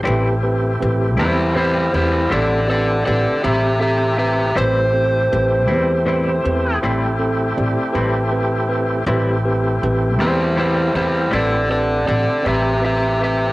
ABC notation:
X:1
M:12/8
L:1/16
Q:3/8=53
K:Am
V:1 name="Electric slide guitar"
z6 [Ec]2 [Ec]2 [Ec]2 [Ad]2 [Ad]2 [Ad]2 [Ge]2 [Ge]2 [Ge]2 | c12 z12 | z6 [Ec]2 [Ec]2 [Ec]2 [Ad]2 [Ad]2 [Ad]2 [Ge]2 [Ge]2 [Ge]2 |]
V:2 name="Tine electric piano"
[CGB]2 [CGB]2 [CGB]2 [CGB]2 [CGB]2 [CGB]2 [CGA]2 [CGB]2 [CGB]2 [CGc]2 [CGA]2 [CGB]2 | [CGB]2 [CGA]2 [CGB]2 [CGB]2 [CGB]2 [CGB]2 [CGc]2 [CGA]2 [CGd]2 [CGB]2 [CGB]2 [CGB]2 | [CGB]2 [CGB]2 [CGB]2 [CGB]2 [CGB]2 [CGB]2 [CGB]2 [CGB]2 [CGd]2 [CGB]2 [CGB]2 [CGB]2 |]
V:3 name="Tonewheel organ"
[A,CEG]24 | [A,CEG]24 | [A,CEG]24 |]
V:4 name="Clean electric guitar"
[A,,G,CE]2 z4 [G,CE]2 [A,,G,CE]2 z2 [A,,G,CE]2 z4 [G,CE]2 z4 | [A,,G,CE]2 z4 [G,CE]2 [A,,G,CE]2 z2 [A,,G,CE]2 z4 [G,CE]2 z4 | [A,,G,CE]2 z4 [G,CE]2 [A,,G,CE]2 z2 [A,,G,CE]2 z4 [G,CE]2 z4 |]
V:5 name="Upright bass" clef=bass
A,,,4 A,,,2 E,,4 E,,2 A,,,4 A,,, z A,,,6 | A,,,4 A,,,2 E,,4 E,,2 A,,,4 A,,, z A,,,6 | A,,,4 A,,,2 E,,4 E,,2 A,,,4 A,,, z A,,,6 |]